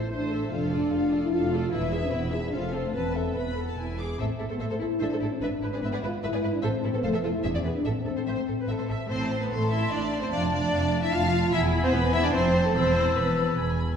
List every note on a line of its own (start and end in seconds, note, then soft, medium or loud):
0.00 0.12 A4 soft
0.00 0.12 C5 soft
0.00 0.11 E5 soft
0.10 0.47 A1 soft
0.10 0.47 A2 soft
0.10 0.42 D4 medium
0.10 0.30 A4 soft
0.10 0.30 C5 soft
0.31 0.52 A4 soft
0.31 0.52 C5 soft
0.31 0.52 E5 soft
0.44 0.53 C4 soft
0.51 0.88 F1 soft
0.51 0.88 F2 soft
0.51 0.72 D4 medium
0.51 0.71 F4 soft
0.51 0.71 A4 soft
0.51 0.70 F5 soft
0.71 1.22 D4 medium
0.71 0.93 F4 soft
0.71 0.92 A4 soft
0.71 0.92 D5 soft
0.92 1.28 F1 soft
0.92 1.28 F2 soft
0.92 1.13 F4 soft
0.92 1.12 A4 soft
0.92 1.12 F5 soft
1.11 1.32 F4 soft
1.11 1.32 A4 soft
1.11 1.32 D5 soft
1.23 1.33 E4 medium
1.32 1.68 F1 medium
1.32 1.68 F2 medium
1.32 1.51 F4 soft
1.32 1.73 F4 medium
1.32 1.51 A4 soft
1.32 1.51 F5 soft
1.52 1.72 F4 soft
1.52 1.73 A4 medium
1.52 1.72 D5 soft
1.72 2.08 E1 medium
1.72 2.08 E2 medium
1.72 1.91 E4 soft
1.72 2.02 E4 medium
1.72 1.91 B4 soft
1.72 1.91 E5 medium
1.92 2.13 G#4 soft
1.92 2.13 B4 soft
1.92 2.13 E5 soft
2.04 2.14 C4 medium
2.12 2.49 E1 medium
2.12 2.49 E2 medium
2.12 2.34 B3 medium
2.12 2.33 E4 soft
2.12 2.33 B4 soft
2.12 2.33 E5 soft
2.33 2.38 E4 medium
2.33 2.53 G#4 soft
2.33 2.53 B4 soft
2.33 2.53 E5 soft
2.45 2.54 D4 medium
2.52 2.90 F1 medium
2.52 2.90 F2 medium
2.52 2.84 C4 medium
2.52 2.73 F4 soft
2.52 2.72 A4 soft
2.52 2.72 F5 soft
2.74 2.94 F4 soft
2.74 2.95 A4 soft
2.74 2.94 C5 soft
2.84 2.95 A3 soft
2.94 3.31 E1 soft
2.94 3.31 E2 soft
2.94 3.35 C4 medium
2.94 3.14 B4 soft
2.94 3.14 A5 soft
3.15 3.36 A4 soft
3.15 3.36 E5 soft
3.35 3.73 E1 soft
3.35 3.73 E2 soft
3.35 3.78 B3 soft
3.35 3.56 B4 soft
3.35 3.57 B4 soft
3.35 3.65 B5 soft
3.57 3.78 A4 soft
3.67 3.78 A5 soft
3.77 4.15 E1 soft
3.77 4.14 E2 soft
3.77 3.97 E4 soft
3.77 3.97 B4 soft
3.77 3.98 G#5 soft
3.98 4.19 G#4 soft
3.98 4.20 G#4 soft
3.98 4.20 D6 soft
4.19 4.24 A1 medium
4.19 4.23 A2 soft
4.19 4.33 C4 soft
4.19 4.24 A4 soft
4.19 4.23 C5 soft
4.19 4.24 E5 medium
4.39 4.44 A1 soft
4.39 4.44 A2 soft
4.39 4.43 E4 soft
4.39 4.44 A4 soft
4.39 4.45 A4 soft
4.49 4.54 A2 soft
4.49 4.60 B3 medium
4.49 4.53 A4 soft
4.49 4.54 A4 soft
4.49 4.54 C5 soft
4.59 4.65 A1 soft
4.59 4.64 A2 medium
4.59 4.80 A3 medium
4.59 4.64 A4 medium
4.59 4.64 C5 soft
4.59 4.65 E5 soft
4.70 4.75 A2 soft
4.70 4.74 A4 soft
4.70 4.75 A4 soft
4.70 4.75 C5 soft
4.79 4.85 A1 soft
4.79 4.85 A2 soft
4.79 4.84 E4 soft
4.79 5.01 E4 medium
4.79 4.85 A4 soft
4.79 4.86 A4 soft
5.00 5.05 A1 soft
5.00 5.05 A2 medium
5.00 5.32 D4 medium
5.00 5.06 A4 medium
5.00 5.04 C5 soft
5.00 5.06 E5 soft
5.10 5.16 A2 soft
5.10 5.14 A4 soft
5.10 5.16 A4 soft
5.10 5.16 C5 soft
5.20 5.26 A1 soft
5.20 5.26 A2 soft
5.20 5.25 E4 soft
5.20 5.26 A4 soft
5.20 5.27 A4 soft
5.32 5.42 C4 medium
5.41 5.46 G#1 medium
5.41 5.46 G#2 soft
5.41 5.72 D4 medium
5.41 5.45 B4 medium
5.41 5.46 B4 medium
5.41 5.47 E5 medium
5.61 5.66 G#1 soft
5.61 5.67 G#2 soft
5.61 5.66 E4 soft
5.61 5.67 B4 soft
5.72 5.76 G#2 soft
5.72 5.82 C4 medium
5.72 5.77 G#4 soft
5.72 5.77 B4 soft
5.72 5.78 D5 soft
5.82 5.87 G#1 medium
5.82 5.87 G#2 medium
5.82 6.02 B3 medium
5.82 5.86 B4 medium
5.82 5.87 B4 medium
5.82 5.88 E5 medium
5.92 5.96 G#2 soft
5.92 5.96 G#4 soft
5.92 5.97 B4 soft
5.92 5.98 D5 soft
6.02 6.07 G#1 soft
6.02 6.07 G#2 soft
6.02 6.07 E4 soft
6.02 6.12 F4 medium
6.02 6.07 B4 soft
6.02 6.08 B4 soft
6.23 6.27 G#1 medium
6.23 6.27 G#2 medium
6.23 6.53 E4 medium
6.23 6.27 B4 medium
6.23 6.28 B4 medium
6.23 6.28 E5 medium
6.32 6.37 G#2 soft
6.32 6.36 G#4 soft
6.32 6.38 B4 soft
6.32 6.37 D5 soft
6.43 6.47 G#1 soft
6.43 6.47 G#2 soft
6.43 6.47 E4 soft
6.43 6.47 B4 medium
6.43 6.48 B4 medium
6.53 6.63 D4 medium
6.62 6.68 A1 medium
6.62 6.67 A2 medium
6.62 6.93 C4 medium
6.62 6.68 A4 medium
6.62 6.67 C5 medium
6.62 6.66 E5 medium
6.83 6.88 A1 soft
6.83 6.87 A2 soft
6.83 6.88 E4 soft
6.83 6.88 A4 soft
6.93 6.97 A2 soft
6.93 7.04 B3 medium
6.93 6.97 A4 soft
6.93 6.98 A4 soft
6.93 6.97 C5 soft
7.03 7.08 F1 medium
7.03 7.07 F2 medium
7.03 7.13 A3 medium
7.03 7.07 A4 medium
7.03 7.07 C5 medium
7.03 7.07 F5 medium
7.13 7.17 F2 soft
7.13 7.17 A4 soft
7.13 7.18 A4 soft
7.13 7.19 E5 soft
7.23 7.28 F1 soft
7.23 7.27 F2 soft
7.23 7.44 E4 medium
7.23 7.27 F4 soft
7.23 7.28 A4 soft
7.23 7.28 C5 soft
7.43 7.49 E1 medium
7.43 7.48 E2 medium
7.43 7.54 D4 medium
7.43 7.48 G#4 medium
7.43 7.48 E5 medium
7.43 7.49 E5 medium
7.54 7.58 E2 soft
7.54 7.61 C4 medium
7.54 7.59 G#4 soft
7.54 7.59 D5 soft
7.64 7.69 E1 soft
7.64 7.68 E2 soft
7.64 7.69 B3 medium
7.64 7.69 G#4 medium
7.64 7.68 B4 soft
7.64 7.70 B4 soft
7.75 7.85 D4 soft
7.84 7.90 A1 medium
7.84 7.89 A2 soft
7.84 8.88 C4 medium
7.84 7.90 A4 soft
7.84 7.89 E5 soft
8.05 8.10 A1 soft
8.05 8.10 A2 soft
8.05 8.10 A4 soft
8.05 8.11 A4 soft
8.16 8.20 A2 soft
8.16 8.21 A4 soft
8.16 8.20 C5 soft
8.16 8.21 C5 soft
8.26 8.31 A1 soft
8.26 8.31 A2 soft
8.26 8.36 C5 soft
8.26 8.30 E5 soft
8.36 8.41 A2 soft
8.36 8.41 C5 soft
8.36 8.42 C5 soft
8.47 8.52 A1 soft
8.47 8.52 A2 soft
8.47 8.51 A4 soft
8.47 8.52 A4 soft
8.60 8.69 B4 soft
8.68 8.73 A1 soft
8.68 8.72 A2 soft
8.68 8.90 A4 soft
8.68 8.72 E5 soft
8.68 8.73 E5 soft
8.79 8.83 A2 soft
8.79 8.83 C5 soft
8.89 8.94 A1 soft
8.89 8.93 A2 soft
8.89 8.93 A4 soft
8.89 8.94 A4 soft
8.89 9.10 E5 soft
9.09 9.46 A1 medium
9.09 9.46 A2 medium
9.09 11.55 A3 soft
9.09 9.38 C4 medium
9.09 9.39 C4 soft
9.09 9.38 C5 medium
9.09 11.49 A5 soft
9.09 9.20 C6 soft
9.21 9.31 A5 soft
9.31 9.41 C6 soft
9.41 9.51 B3 soft
9.41 9.52 B3 medium
9.41 9.45 B4 soft
9.41 9.51 A5 soft
9.51 9.87 A1 soft
9.51 9.87 A2 medium
9.51 9.72 A3 medium
9.51 9.71 A4 medium
9.51 10.28 C6 medium
9.51 9.61 C6 soft
9.62 9.72 A5 soft
9.70 9.91 E4 medium
9.70 9.82 E4 medium
9.70 9.91 E5 medium
9.70 9.82 C6 soft
9.82 9.92 A5 soft
9.91 10.27 A1 medium
9.91 10.27 A2 medium
9.91 10.00 D4 medium
9.91 10.22 D4 medium
9.91 10.22 D5 medium
9.91 10.01 C6 soft
10.02 10.12 A5 soft
10.12 10.22 C6 soft
10.21 10.26 C4 medium
10.21 10.32 C4 soft
10.21 10.32 C5 medium
10.21 10.32 A5 soft
10.31 10.67 F1 medium
10.31 10.67 F2 medium
10.31 10.52 D4 medium
10.31 10.50 D5 medium
10.31 10.41 F5 soft
10.31 10.71 A5 soft
10.42 10.52 A5 soft
10.51 11.02 D4 medium
10.51 11.01 D5 medium
10.51 10.62 F5 soft
10.61 10.72 A5 soft
10.72 11.08 F1 medium
10.72 11.08 F2 medium
10.72 10.81 F5 soft
10.72 11.51 A5 medium
10.82 10.92 A5 soft
10.91 11.02 F5 soft
11.01 11.12 E4 medium
11.01 11.12 E5 medium
11.01 11.12 A5 soft
11.12 11.48 F1 medium
11.12 11.48 F2 medium
11.12 11.53 F4 medium
11.12 11.21 F5 medium
11.12 11.52 F5 medium
11.22 11.32 A5 soft
11.32 11.43 F5 soft
11.42 11.52 A5 soft
11.52 11.88 E1 medium
11.52 11.88 E2 medium
11.52 12.36 B3 medium
11.52 11.82 E4 medium
11.52 11.83 E4 medium
11.52 11.61 E5 medium
11.52 12.35 G#5 medium
11.52 11.93 G#5 medium
11.52 11.61 B5 medium
11.63 11.73 G#5 medium
11.73 11.83 B5 soft
11.82 11.92 C4 medium
11.82 11.87 C4 medium
11.82 11.93 C5 medium
11.82 11.93 G#5 medium
11.93 12.29 E1 medium
11.93 12.29 E2 medium
11.93 12.13 B3 medium
11.93 12.01 B3 medium
11.93 12.13 B4 medium
11.93 12.33 B5 medium
11.93 12.03 B5 medium
12.04 12.14 G#5 medium
12.13 12.23 E4 medium
12.13 12.23 E5 medium
12.13 12.24 B5 soft
12.22 12.33 D4 medium
12.22 12.34 D5 medium
12.22 12.33 G#5 medium
12.33 12.70 F1 medium
12.33 12.70 F2 medium
12.33 12.64 C4 medium
12.33 12.74 C4 medium
12.33 12.64 C5 medium
12.33 13.60 A5 medium
12.33 12.74 A5 medium
12.33 12.43 C6 medium
12.44 12.54 A5 soft
12.54 12.64 C6 medium
12.64 12.74 A3 medium
12.64 12.75 A3 medium
12.64 12.75 A4 medium
12.64 12.75 A5 soft
12.74 13.11 E1 medium
12.74 13.11 E2 medium
12.74 13.16 C4 medium
12.74 13.15 C4 medium
12.74 13.77 E4 medium
12.74 13.16 C5 medium
12.74 12.84 B5 medium
12.74 13.79 E6 medium
12.85 12.96 A5 soft
12.96 13.06 B5 soft
13.06 13.16 A5 soft
13.15 13.53 E1 medium
13.15 13.53 E2 medium
13.15 13.57 B3 soft
13.15 13.58 B3 medium
13.15 13.57 B4 medium
13.15 13.27 B5 soft
13.28 13.38 A5 soft
13.37 13.48 B5 soft
13.47 13.58 A5 soft
13.57 13.95 E1 medium
13.57 13.94 E2 medium
13.57 13.79 G#5 soft
13.57 13.68 B5 soft
13.69 13.79 G#5 soft
13.79 13.89 B5 soft
13.89 13.97 G#5 soft